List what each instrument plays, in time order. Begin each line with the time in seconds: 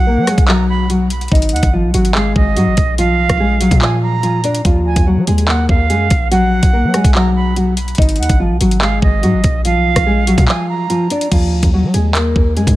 Already playing: 808-style bass B1, flute F#5
0.07 nylon-string guitar A#3 A#4
0.17 808-style bass F#3
0.27 nylon-string guitar G#3 G#4, cross-stick, closed hi-hat
0.38 808-style bass B1, kick, closed hi-hat
0.48 nylon-string guitar F#3 F#4, flute A#5, clap
0.69 flute B5
0.90 nylon-string guitar F#3 F#4, closed hi-hat
1.10 closed hi-hat
1.21 closed hi-hat
1.28 808-style bass G#1, nylon-string guitar D#4, kick, closed hi-hat
1.32 nylon-string guitar D#5, closed hi-hat
1.42 closed hi-hat
1.49 808-style bass D#2, flute F#5, closed hi-hat
1.56 closed hi-hat
1.63 808-style bass G#1, kick, closed hi-hat
1.73 nylon-string guitar F3 F4
1.84 808-style bass B1
1.94 808-style bass G#1, nylon-string guitar F#3 F#4, closed hi-hat
2.05 closed hi-hat
2.15 nylon-string guitar G#3 G#4, flute F5, clap
2.36 808-style bass G#1, flute D#5, kick
2.57 808-style bass G#2, nylon-string guitar F#3 F#4, closed hi-hat
2.67 808-style bass G#1
2.77 808-style bass A#1, kick, closed hi-hat
2.98 nylon-string guitar F3 F4, flute F5, closed hi-hat
3.09 808-style bass B1
3.29 808-style bass A#1, kick, cross-stick, closed hi-hat
3.40 nylon-string guitar G#3 G#4
3.61 nylon-string guitar F#3 F#4, closed hi-hat
3.71 808-style bass A#2, kick, closed hi-hat
3.81 nylon-string guitar F3 F4, flute G#5, clap
4.02 flute A#5
4.23 nylon-string guitar F3 F4, closed hi-hat
4.44 nylon-string guitar D4 D5, closed hi-hat
4.55 closed hi-hat
4.65 808-style bass D#2, nylon-string guitar F3 F4, kick, closed hi-hat
4.86 808-style bass D2, flute G#5
4.96 808-style bass D#2, kick, closed hi-hat
5.07 nylon-string guitar F#3 F#4
5.17 808-style bass F#3
5.27 808-style bass D#2, nylon-string guitar G#3 G#4, closed hi-hat
5.38 closed hi-hat
5.48 nylon-string guitar A#3 A#4, flute F#5, clap
5.69 808-style bass D#2, flute F5, kick
5.90 808-style bass F#2, nylon-string guitar G#3 G#4, closed hi-hat
6.10 808-style bass A#1, kick, closed hi-hat
6.31 nylon-string guitar F#3 F#4, flute F#5, closed hi-hat
6.63 808-style bass B1, kick, closed hi-hat
6.73 nylon-string guitar A#3 A#4
6.84 808-style bass F#3
6.94 nylon-string guitar G#3 G#4, cross-stick, closed hi-hat
7.04 808-style bass B1, kick, closed hi-hat
7.15 nylon-string guitar F#3 F#4, flute A#5, clap
7.36 flute B5
7.56 nylon-string guitar F#3 F#4, closed hi-hat
7.77 closed hi-hat
7.88 closed hi-hat
7.95 808-style bass G#1, nylon-string guitar D#4, kick, closed hi-hat
7.99 nylon-string guitar D#5, closed hi-hat
8.09 closed hi-hat
8.16 808-style bass D#2, flute F#5, closed hi-hat
8.23 closed hi-hat
8.29 808-style bass G#1, kick, closed hi-hat
8.40 nylon-string guitar F3 F4
8.50 808-style bass B1
8.61 808-style bass G#1, nylon-string guitar F#3 F#4, closed hi-hat
8.71 closed hi-hat
8.81 nylon-string guitar G#3 G#4, flute F5, clap
9.02 808-style bass G#1, flute D#5, kick
9.23 808-style bass G#2, nylon-string guitar F#3 F#4, closed hi-hat
9.34 808-style bass G#1
9.44 808-style bass A#1, kick, closed hi-hat
9.65 nylon-string guitar F3 F4, flute F5, closed hi-hat
9.75 808-style bass B1
9.96 808-style bass A#1, kick, cross-stick, closed hi-hat
10.06 nylon-string guitar G#3 G#4
10.27 nylon-string guitar F#3 F#4, closed hi-hat
10.38 808-style bass A#2, kick, closed hi-hat
10.48 nylon-string guitar F3 F4, flute G#5, clap
10.69 flute A#5
10.90 nylon-string guitar F3 F4, closed hi-hat
11.10 nylon-string guitar D4 D5, closed hi-hat
11.21 closed hi-hat
11.32 808-style bass D#2, nylon-string guitar F3 F4, kick, closed hi-hat, crash
11.52 808-style bass D2
11.63 808-style bass D#2, kick, closed hi-hat
11.74 nylon-string guitar F#3 F#4
11.84 808-style bass F#3
11.94 808-style bass D#2, nylon-string guitar G#3 G#4, closed hi-hat
12.15 nylon-string guitar A#3 A#4, clap, closed hi-hat
12.36 808-style bass D#2, kick
12.57 808-style bass F#2, nylon-string guitar G#3 G#4, closed hi-hat
12.67 808-style bass F#2, kick, closed hi-hat